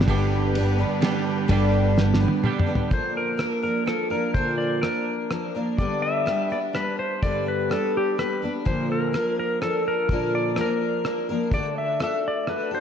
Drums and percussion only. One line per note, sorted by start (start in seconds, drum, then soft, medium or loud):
0.01 snare medium
0.08 kick loud
0.08 ride medium
0.55 ride medium
1.02 snare medium
1.02 ride medium
1.49 kick loud
1.49 ride medium
1.98 snare medium
2.14 snare medium
2.28 high tom medium
2.44 mid tom medium
2.60 mid tom medium
2.75 floor tom medium
2.91 kick medium
3.39 cross-stick medium
3.88 cross-stick medium
4.34 kick medium
4.83 cross-stick medium
5.31 cross-stick medium
5.78 kick medium
6.27 cross-stick medium
6.75 cross-stick medium
7.23 kick medium
7.71 cross-stick medium
8.19 cross-stick medium
8.66 kick medium
9.14 cross-stick medium
9.62 cross-stick medium
10.09 kick medium
10.56 cross-stick medium
11.05 cross-stick medium
11.52 kick medium
12.00 cross-stick medium
12.47 cross-stick medium